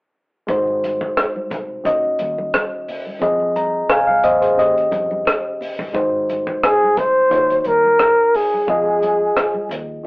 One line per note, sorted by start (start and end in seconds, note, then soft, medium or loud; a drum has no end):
0.47 1.09 G#1 loud
0.47 1.81 G#3 medium
0.47 1.82 D#4 medium
0.47 1.83 F#4 medium
0.47 1.83 C5 medium
0.47 kick loud
0.47 closed hi-hat medium
0.47 muted conga soft
0.47 low conga medium
0.67 muted conga soft
0.84 closed hi-hat medium
0.84 high conga medium
1.01 kick medium
1.17 cross-stick medium
1.17 closed hi-hat medium
1.17 muted conga soft
1.36 high conga medium
1.51 1.85 C2 medium
1.51 kick medium
1.51 closed hi-hat medium
1.51 low conga medium
1.84 2.15 D#2 loud
1.84 3.18 D#3 medium
1.84 3.19 C#4 medium
1.84 3.19 F#4 medium
1.84 3.19 D#5 medium
1.84 kick medium
1.84 closed hi-hat medium
1.84 muted conga soft
2.04 muted conga soft
2.19 2.49 D#2 medium
2.19 closed hi-hat medium
2.19 high conga medium
2.38 high conga medium
2.54 cross-stick loud
2.54 closed hi-hat medium
2.54 high conga medium
2.88 open hi-hat medium
2.88 low conga medium
3.07 high conga medium
3.19 3.82 F2 loud
3.19 4.54 F3 medium
3.19 4.55 C4 medium
3.19 3.55 G#4 medium
3.19 3.55 D#5 medium
3.19 kick medium
3.19 closed hi-hat medium
3.19 muted conga soft
3.19 low conga medium
3.40 muted conga soft
3.56 3.88 A#5 medium
3.56 closed hi-hat medium
3.56 high conga medium
3.89 4.06 F5 medium
3.89 4.07 G#5 medium
3.89 cross-stick loud
3.89 closed hi-hat medium
3.89 muted conga soft
4.07 4.23 F5 medium
4.07 high conga medium
4.23 4.54 D#2 medium
4.23 4.40 C5 medium
4.23 4.41 D#5 medium
4.23 closed hi-hat medium
4.23 low conga medium
4.41 4.75 G#4 soft
4.41 4.74 C5 medium
4.41 closed hi-hat medium
4.56 4.88 D#2 loud
4.56 5.91 D#3 medium
4.56 5.92 C#4 medium
4.56 5.92 G4 medium
4.56 5.92 D#5 medium
4.56 closed hi-hat medium
4.56 muted conga soft
4.78 closed hi-hat soft
4.92 5.22 F2 medium
4.92 kick medium
4.92 closed hi-hat medium
4.92 high conga medium
5.11 high conga medium
5.25 cross-stick loud
5.25 closed hi-hat medium
5.25 muted conga soft
5.25 high conga medium
5.61 open hi-hat medium
5.61 low conga medium
5.79 kick medium
5.79 high conga soft
5.93 6.55 G#1 loud
5.93 7.28 G#3 medium
5.93 7.28 D#4 medium
5.93 7.29 F#4 medium
5.93 7.29 C5 medium
5.93 kick loud
5.93 closed hi-hat medium
5.93 muted conga soft
6.29 closed hi-hat medium
6.29 high conga medium
6.47 kick medium
6.63 7.00 G#4 medium
6.63 cross-stick loud
6.63 closed hi-hat medium
6.63 muted conga soft
6.83 high conga medium
6.97 7.28 C2 medium
6.97 7.61 C5 medium
6.97 kick medium
6.97 closed hi-hat medium
6.97 low conga medium
7.30 7.61 D#2 medium
7.30 8.65 D#3 soft
7.30 8.65 D#4 soft
7.30 7.39 F4 soft
7.30 8.66 C#5 medium
7.30 kick medium
7.30 closed hi-hat medium
7.38 8.69 F#4 soft
7.50 closed hi-hat soft
7.50 muted conga soft
7.61 7.69 C5 medium
7.61 closed hi-hat medium
7.65 7.96 D#2 medium
7.65 8.38 A#4 medium
7.65 high conga medium
7.84 high conga medium
7.99 cross-stick medium
7.99 closed hi-hat medium
7.99 high conga medium
8.34 9.72 G#4 medium
8.34 open hi-hat medium
8.34 low conga medium
8.54 high conga medium
8.67 9.28 F2 loud
8.67 10.02 F3 medium
8.67 10.02 F4 soft
8.67 10.03 G#4 soft
8.67 10.03 D#5 medium
8.67 kick loud
8.67 closed hi-hat medium
8.67 muted conga soft
8.86 muted conga soft
9.02 closed hi-hat medium
9.02 high conga medium
9.37 cross-stick medium
9.37 closed hi-hat medium
9.37 muted conga soft
9.54 muted conga soft
9.54 high conga medium
9.69 10.01 D#2 medium
9.69 closed hi-hat medium
9.69 low conga medium
10.03 10.06 D#3 medium